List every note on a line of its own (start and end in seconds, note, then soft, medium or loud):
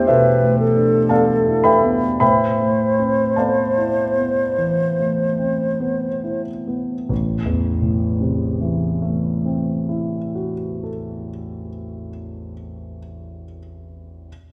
0.00 2.23 E2 medium
0.00 0.42 A3 soft
0.00 1.10 B3 soft
0.00 0.76 D4 soft
0.00 1.46 E4 soft
0.00 2.24 G4 medium
0.00 0.08 A4 medium
0.00 0.09 C5 medium
0.00 0.11 C5 medium
0.00 0.07 E5 medium
0.00 1.65 G5 medium
0.07 0.61 B2 soft
0.07 1.06 A4 medium
0.07 0.59 B4 medium
0.07 1.06 C5 medium
0.07 1.10 E5 medium
0.42 0.96 A3 soft
0.59 1.85 A4 medium
0.76 1.32 D4 soft
1.09 1.68 B3 soft
1.09 1.60 A4 soft
1.09 1.60 D5 soft
1.09 1.60 F5 soft
1.09 1.64 A5 medium
1.46 2.06 E4 soft
1.64 2.17 B4 medium
1.64 2.17 E5 medium
1.64 2.17 G5 medium
1.64 2.19 B5 medium
1.84 2.21 B3 soft
2.20 4.54 A2 soft
2.20 3.34 B4 medium
2.20 6.42 C5 soft
2.20 3.33 E5 medium
2.20 3.33 G5 medium
2.20 3.37 B5 medium
2.60 3.22 A3 soft
2.99 3.62 C4 soft
3.36 4.02 B3 soft
3.36 6.42 A4 soft
3.36 6.42 D5 soft
3.36 6.42 F5 soft
3.36 6.45 A5 soft
3.77 4.42 E4 soft
4.18 4.83 B3 soft
4.58 5.23 E3 soft
4.99 5.65 A3 soft
5.39 6.06 C4 soft
5.80 6.50 B3 soft
6.24 6.93 E4 soft
6.67 7.10 B3 soft
7.09 10.17 A1 soft
7.45 10.53 E2 soft
7.82 10.89 A2 soft
8.21 11.28 C3 soft
8.61 11.68 E3 soft
9.02 12.09 A3 soft
9.45 12.53 C4 soft
9.89 12.96 E4 soft
10.35 13.42 F#4 soft
10.84 13.58 A4 soft